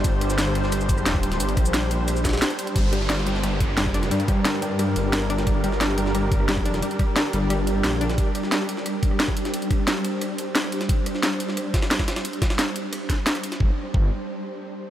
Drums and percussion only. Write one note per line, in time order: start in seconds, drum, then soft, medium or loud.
0.04 kick loud
0.04 closed hi-hat loud
0.04 ride medium
0.04 shaker medium
0.21 cross-stick soft
0.21 closed hi-hat medium
0.21 ride medium
0.30 snare soft
0.30 shaker medium
0.38 snare loud
0.38 closed hi-hat medium
0.38 ride medium
0.38 shaker medium
0.55 closed hi-hat medium
0.55 ride medium
0.64 snare soft
0.72 cross-stick soft
0.72 closed hi-hat medium
0.72 ride medium
0.72 shaker medium
0.81 shaker soft
0.89 kick loud
0.89 closed hi-hat medium
0.89 ride medium
0.89 shaker medium
0.98 cross-stick soft
0.98 shaker soft
1.06 snare loud
1.06 closed hi-hat loud
1.06 ride medium
1.06 shaker soft
1.15 kick medium
1.15 cross-stick soft
1.23 closed hi-hat medium
1.23 ride medium
1.32 snare medium
1.32 closed hi-hat soft
1.40 closed hi-hat loud
1.40 ride medium
1.40 shaker medium
1.49 closed hi-hat soft
1.57 kick loud
1.57 cross-stick soft
1.57 closed hi-hat medium
1.57 ride medium
1.66 shaker medium
1.74 snare loud
1.74 closed hi-hat loud
1.74 ride medium
1.74 shaker medium
1.91 closed hi-hat medium
1.91 ride medium
1.91 shaker soft
2.08 cross-stick soft
2.08 closed hi-hat medium
2.08 ride medium
2.08 shaker soft
2.16 shaker soft
2.25 kick medium
2.25 snare soft
2.25 snare medium
2.25 closed hi-hat medium
2.25 ride medium
2.25 shaker medium
2.29 snare medium
2.29 ride medium
2.33 snare medium
2.33 ride medium
2.33 shaker soft
2.38 snare medium
2.38 ride medium
2.42 snare loud
2.42 closed hi-hat loud
2.42 ride medium
2.42 shaker soft
2.50 cross-stick soft
2.50 closed hi-hat soft
2.59 closed hi-hat medium
2.59 ride medium
2.59 shaker soft
2.67 closed hi-hat soft
2.76 kick loud
2.76 closed hi-hat medium
2.76 ride medium
2.93 cross-stick soft
2.93 closed hi-hat medium
2.93 ride medium
3.01 snare soft
3.10 snare loud
3.10 closed hi-hat loud
3.10 ride medium
3.27 closed hi-hat medium
3.27 ride medium
3.35 snare soft
3.43 cross-stick soft
3.43 closed hi-hat medium
3.43 ride medium
3.60 kick loud
3.60 closed hi-hat medium
3.60 ride medium
3.69 cross-stick soft
3.77 snare loud
3.77 closed hi-hat medium
3.77 ride medium
3.86 kick medium
3.86 cross-stick soft
3.94 closed hi-hat medium
3.94 ride medium
4.03 snare soft
4.03 closed hi-hat soft
4.11 closed hi-hat loud
4.11 ride medium
4.20 closed hi-hat soft
4.28 kick loud
4.28 cross-stick soft
4.28 closed hi-hat medium
4.28 ride medium
4.45 snare loud
4.45 closed hi-hat medium
4.45 ride medium
4.62 closed hi-hat medium
4.62 ride medium
4.79 cross-stick soft
4.79 closed hi-hat medium
4.79 ride medium
4.96 closed hi-hat medium
4.96 ride medium
5.13 snare loud
5.13 closed hi-hat medium
5.13 ride medium
5.21 cross-stick soft
5.30 closed hi-hat medium
5.30 ride medium
5.38 snare medium
5.38 closed hi-hat soft
5.47 kick loud
5.47 closed hi-hat medium
5.47 ride medium
5.64 cross-stick soft
5.64 closed hi-hat medium
5.64 ride medium
5.72 snare soft
5.81 snare loud
5.81 closed hi-hat medium
5.81 ride medium
5.98 closed hi-hat medium
5.98 ride medium
6.06 snare soft
6.15 cross-stick soft
6.15 closed hi-hat medium
6.15 ride medium
6.32 kick loud
6.32 closed hi-hat medium
6.32 ride medium
6.40 cross-stick soft
6.49 snare loud
6.49 closed hi-hat medium
6.49 ride medium
6.57 kick medium
6.57 cross-stick soft
6.66 closed hi-hat medium
6.66 ride medium
6.74 snare medium
6.74 closed hi-hat soft
6.82 closed hi-hat medium
6.82 ride medium
6.91 closed hi-hat soft
6.99 kick loud
6.99 cross-stick soft
6.99 closed hi-hat medium
6.99 ride medium
7.16 snare loud
7.16 closed hi-hat medium
7.16 ride medium
7.33 closed hi-hat medium
7.33 ride medium
7.50 cross-stick soft
7.50 closed hi-hat medium
7.50 ride medium
7.67 closed hi-hat medium
7.67 ride medium
7.84 snare loud
7.84 closed hi-hat medium
7.84 ride medium
7.93 cross-stick soft
8.01 closed hi-hat medium
8.01 ride medium
8.10 snare medium
8.10 closed hi-hat soft
8.18 kick loud
8.18 closed hi-hat medium
8.18 ride medium
8.35 cross-stick soft
8.35 closed hi-hat medium
8.35 ride medium
8.43 snare soft
8.52 snare loud
8.52 closed hi-hat medium
8.52 ride medium
8.69 closed hi-hat medium
8.69 ride medium
8.77 snare soft
8.86 cross-stick soft
8.86 closed hi-hat medium
8.86 ride medium
9.03 kick loud
9.03 closed hi-hat medium
9.03 ride medium
9.11 cross-stick soft
9.20 snare loud
9.20 closed hi-hat medium
9.20 ride medium
9.28 kick medium
9.28 cross-stick soft
9.37 closed hi-hat medium
9.37 ride medium
9.45 snare soft
9.45 closed hi-hat soft
9.54 closed hi-hat medium
9.54 ride medium
9.62 closed hi-hat soft
9.71 kick loud
9.71 cross-stick soft
9.71 closed hi-hat medium
9.71 ride medium
9.88 snare loud
9.88 closed hi-hat medium
9.88 ride medium
10.04 closed hi-hat medium
10.04 ride medium
10.21 cross-stick soft
10.21 closed hi-hat medium
10.21 ride medium
10.38 closed hi-hat medium
10.38 ride medium
10.55 snare loud
10.55 closed hi-hat medium
10.55 ride medium
10.64 cross-stick soft
10.72 closed hi-hat medium
10.72 ride medium
10.81 snare medium
10.81 closed hi-hat soft
10.89 kick loud
10.89 closed hi-hat medium
10.89 ride medium
11.06 cross-stick soft
11.06 closed hi-hat medium
11.06 ride medium
11.15 snare soft
11.23 snare loud
11.23 closed hi-hat medium
11.23 ride medium
11.40 closed hi-hat medium
11.40 ride medium
11.49 snare soft
11.57 cross-stick soft
11.57 closed hi-hat medium
11.57 ride medium
11.74 kick loud
11.74 snare loud
11.74 closed hi-hat medium
11.74 ride medium
11.82 cross-stick soft
11.82 snare loud
11.82 ride medium
11.91 snare loud
11.91 closed hi-hat medium
11.91 ride medium
11.99 kick medium
11.99 cross-stick soft
11.99 snare loud
11.99 ride medium
12.08 snare loud
12.08 closed hi-hat medium
12.08 ride medium
12.16 snare loud
12.16 closed hi-hat soft
12.16 ride medium
12.25 closed hi-hat medium
12.25 ride medium
12.33 closed hi-hat soft
12.42 kick loud
12.42 cross-stick soft
12.42 snare loud
12.42 closed hi-hat medium
12.42 ride medium
12.50 snare loud
12.50 ride medium
12.59 snare loud
12.59 closed hi-hat medium
12.59 ride medium
12.76 closed hi-hat medium
12.76 ride medium
12.93 cross-stick soft
12.93 closed hi-hat medium
12.93 ride medium
13.10 kick medium
13.10 snare soft
13.10 closed hi-hat medium
13.10 ride medium
13.26 snare loud
13.26 closed hi-hat medium
13.26 ride medium
13.35 cross-stick soft
13.35 closed hi-hat soft
13.43 closed hi-hat medium
13.43 ride medium
13.52 snare soft
13.52 closed hi-hat soft
13.60 kick loud
13.94 kick loud